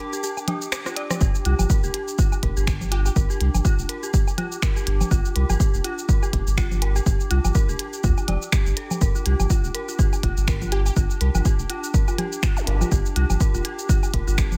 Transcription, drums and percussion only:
0.13 shaker soft
0.23 shaker medium
0.37 low woodblock medium
0.37 shaker soft
0.48 closed hi-hat medium
0.48 low conga medium
0.48 low woodblock medium
0.62 shaker soft
0.72 finger snap loud
0.72 cross-stick medium
0.72 shaker medium
0.86 cross-stick medium
0.86 shaker soft
0.96 closed hi-hat medium
1.10 cross-stick medium
1.10 low conga loud
1.10 low woodblock medium
1.10 shaker soft
1.21 kick loud
1.21 shaker medium
1.35 shaker soft
1.45 closed hi-hat medium
1.59 low conga medium
1.59 low woodblock medium
1.59 shaker soft
1.70 kick loud
1.70 shaker medium
1.84 shaker soft
1.94 closed hi-hat medium
2.08 shaker soft
2.18 kick loud
2.18 shaker medium
2.32 low woodblock medium
2.32 shaker soft
2.43 kick medium
2.43 closed hi-hat medium
2.57 shaker soft
2.67 finger snap loud
2.67 kick loud
2.67 shaker medium
2.81 low conga medium
2.81 shaker soft
2.92 closed hi-hat medium
2.92 low woodblock medium
3.06 low woodblock medium
3.06 shaker soft
3.16 kick loud
3.16 shaker medium
3.30 shaker soft
3.41 closed hi-hat loud
3.54 low conga medium
3.54 low woodblock medium
3.54 shaker soft
3.65 kick loud
3.65 shaker medium
3.79 shaker soft
3.89 closed hi-hat loud
4.03 shaker soft
4.14 kick loud
4.14 shaker medium
4.28 low woodblock medium
4.28 shaker soft
4.38 closed hi-hat medium
4.38 low conga loud
4.38 low woodblock medium
4.52 shaker soft
4.62 finger snap loud
4.62 kick loud
4.62 shaker medium
4.76 shaker soft
4.87 closed hi-hat medium
5.01 low conga loud
5.01 low woodblock medium
5.01 shaker soft
5.11 kick loud
5.11 shaker medium
5.25 shaker soft
5.36 closed hi-hat medium
5.50 low conga medium
5.50 low woodblock medium
5.50 shaker soft
5.60 kick loud
5.60 shaker medium
5.74 shaker soft
5.84 closed hi-hat loud
5.98 shaker soft
6.09 kick loud
6.09 shaker medium
6.23 low woodblock medium
6.23 shaker soft
6.33 kick medium
6.33 closed hi-hat loud
6.47 shaker soft
6.57 finger snap loud
6.57 kick loud
6.57 shaker medium
6.71 low conga medium
6.71 shaker soft
6.82 closed hi-hat loud
6.82 low woodblock medium
6.96 low woodblock medium
6.96 shaker soft
7.06 kick loud
7.06 shaker soft
7.20 shaker soft
7.31 closed hi-hat medium
7.45 low conga medium
7.45 low woodblock medium
7.45 shaker soft
7.55 kick loud
7.55 shaker medium
7.69 shaker soft
7.79 closed hi-hat loud
7.93 shaker soft
8.04 kick loud
8.04 shaker medium
8.18 low woodblock medium
8.18 shaker soft
8.28 closed hi-hat loud
8.28 low conga medium
8.28 low woodblock medium
8.42 shaker soft
8.52 finger snap loud
8.52 kick loud
8.52 shaker medium
8.66 shaker soft
8.77 closed hi-hat medium
8.91 low conga medium
8.91 low woodblock medium
8.91 shaker soft
9.01 kick loud
9.01 shaker medium
9.15 shaker soft
9.26 closed hi-hat medium
9.40 low conga medium
9.40 low woodblock medium
9.40 shaker soft
9.50 kick loud
9.50 shaker medium
9.64 shaker soft
9.75 closed hi-hat medium
9.89 shaker soft
9.99 kick loud
9.99 shaker soft
10.13 low woodblock medium
10.13 shaker soft
10.23 kick medium
10.23 closed hi-hat medium
10.37 shaker soft
10.48 finger snap loud
10.48 kick loud
10.48 shaker medium
10.62 low conga medium
10.62 shaker soft
10.72 closed hi-hat medium
10.72 low woodblock medium
10.86 low woodblock medium
10.86 shaker soft
10.96 kick loud
10.96 shaker medium
11.10 shaker soft
11.21 closed hi-hat medium
11.35 low conga medium
11.35 low woodblock medium
11.35 shaker soft
11.45 kick loud
11.45 shaker medium
11.59 shaker soft
11.70 closed hi-hat medium
11.84 shaker soft
11.94 kick loud
11.94 shaker medium
12.08 low woodblock medium
12.08 shaker soft
12.18 closed hi-hat medium
12.18 low conga medium
12.18 low woodblock medium
12.32 shaker soft
12.43 finger snap loud
12.43 kick loud
12.43 shaker medium
12.57 shaker soft
12.67 closed hi-hat medium
12.81 low conga medium
12.81 low woodblock medium
12.81 shaker soft
12.92 kick loud
12.92 shaker medium
13.06 shaker soft
13.16 closed hi-hat medium
13.30 low conga medium
13.30 low woodblock medium
13.30 shaker soft
13.40 kick loud
13.40 shaker medium
13.54 shaker soft
13.65 closed hi-hat medium
13.79 shaker soft
13.89 kick loud
13.89 shaker medium
14.03 low woodblock medium
14.03 shaker soft
14.14 kick medium
14.14 closed hi-hat medium
14.28 shaker soft
14.38 finger snap loud
14.38 kick loud
14.38 shaker medium
14.52 low conga medium
14.52 shaker soft

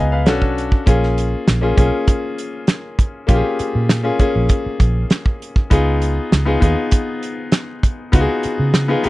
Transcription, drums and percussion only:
0.26 snare loud
0.26 closed hi-hat medium
0.42 kick medium
0.58 closed hi-hat medium
0.72 kick medium
0.87 kick loud
0.87 closed hi-hat medium
1.03 snare soft
1.18 closed hi-hat medium
1.48 snare loud
1.48 closed hi-hat medium
1.78 kick medium
1.78 closed hi-hat medium
2.08 kick medium
2.08 closed hi-hat medium
2.38 closed hi-hat medium
2.67 snare loud
2.67 closed hi-hat medium
2.99 kick medium
2.99 closed hi-hat medium
3.28 kick loud
3.28 closed hi-hat medium
3.59 closed hi-hat medium
3.89 snare loud
3.89 closed hi-hat medium
4.19 kick medium
4.19 closed hi-hat medium
4.49 kick medium
4.49 closed hi-hat medium
4.80 kick medium
4.80 closed hi-hat medium
5.10 snare loud
5.10 closed hi-hat medium
5.26 kick medium
5.42 closed hi-hat medium
5.56 kick medium
5.71 kick loud
5.71 closed hi-hat medium
6.02 closed hi-hat medium
6.32 snare loud
6.32 closed hi-hat medium
6.62 kick medium
6.62 closed hi-hat medium
6.91 kick medium
6.91 closed hi-hat medium
7.23 closed hi-hat medium
7.52 snare loud
7.52 closed hi-hat medium
7.83 kick medium
7.83 closed hi-hat medium
8.13 kick loud
8.13 closed hi-hat medium
8.43 closed hi-hat medium
8.74 snare loud
8.74 closed hi-hat medium
9.04 closed hi-hat medium

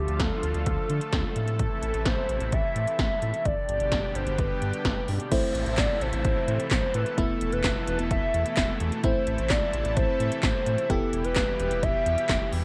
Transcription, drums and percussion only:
0.08 closed hi-hat soft
0.20 kick loud
0.20 snare loud
0.20 closed hi-hat medium
0.43 closed hi-hat medium
0.54 closed hi-hat soft
0.66 kick loud
0.66 closed hi-hat medium
0.90 closed hi-hat medium
1.01 closed hi-hat medium
1.13 kick loud
1.13 snare loud
1.13 closed hi-hat medium
1.36 closed hi-hat medium
1.48 closed hi-hat soft
1.59 kick loud
1.59 closed hi-hat medium
1.83 closed hi-hat medium
1.94 closed hi-hat soft
2.05 kick loud
2.05 snare loud
2.05 closed hi-hat medium
2.29 closed hi-hat medium
2.40 closed hi-hat medium
2.52 kick loud
2.52 closed hi-hat medium
2.76 closed hi-hat medium
2.87 closed hi-hat medium
2.99 kick loud
2.99 snare loud
2.99 closed hi-hat medium
3.22 closed hi-hat medium
3.34 closed hi-hat soft
3.45 kick loud
3.45 closed hi-hat medium
3.69 closed hi-hat medium
3.80 closed hi-hat soft
3.92 kick loud
3.92 snare loud
3.92 closed hi-hat medium
4.15 closed hi-hat medium
4.27 closed hi-hat medium
4.38 kick loud
4.38 closed hi-hat medium
4.62 closed hi-hat medium
4.73 closed hi-hat medium
4.85 kick loud
4.85 snare loud
4.85 closed hi-hat medium
5.08 open hi-hat medium
5.20 closed hi-hat soft
5.32 kick loud
5.32 closed hi-hat medium
5.32 crash loud
5.55 closed hi-hat medium
5.66 closed hi-hat soft
5.78 kick loud
5.78 snare loud
5.78 clap loud
5.78 closed hi-hat medium
6.01 closed hi-hat medium
6.13 closed hi-hat medium
6.25 kick loud
6.25 closed hi-hat medium
6.48 closed hi-hat medium
6.60 closed hi-hat medium
6.71 kick loud
6.71 snare loud
6.71 clap loud
6.71 closed hi-hat medium
6.94 closed hi-hat medium
7.06 closed hi-hat soft
7.18 kick loud
7.18 closed hi-hat medium
7.41 closed hi-hat medium
7.52 closed hi-hat medium
7.64 kick loud
7.64 snare loud
7.64 clap loud
7.64 closed hi-hat medium
7.88 closed hi-hat medium
7.99 closed hi-hat medium
8.11 kick loud
8.11 closed hi-hat medium
8.34 closed hi-hat medium
8.46 closed hi-hat medium
8.57 kick loud
8.57 snare loud
8.57 clap loud
8.57 closed hi-hat medium
8.80 closed hi-hat medium
8.92 closed hi-hat soft
9.04 kick loud
9.04 closed hi-hat medium
9.27 closed hi-hat medium
9.38 closed hi-hat soft
9.50 kick loud
9.50 snare loud
9.50 clap loud
9.50 closed hi-hat medium
9.73 closed hi-hat medium
9.85 closed hi-hat medium
9.97 kick loud
9.97 closed hi-hat medium
10.20 closed hi-hat medium
10.32 closed hi-hat medium
10.43 kick loud
10.43 snare loud
10.43 clap loud
10.43 closed hi-hat medium
10.66 closed hi-hat medium
10.78 closed hi-hat soft
10.90 kick loud
10.90 closed hi-hat medium
11.13 closed hi-hat medium
11.24 closed hi-hat medium
11.36 kick loud
11.36 snare loud
11.36 clap loud
11.36 closed hi-hat medium
11.60 closed hi-hat medium
11.71 closed hi-hat medium
11.83 kick loud
11.83 closed hi-hat medium
12.06 closed hi-hat medium
12.18 closed hi-hat medium
12.29 kick loud
12.29 snare loud
12.29 clap loud
12.29 closed hi-hat medium
12.53 open hi-hat medium

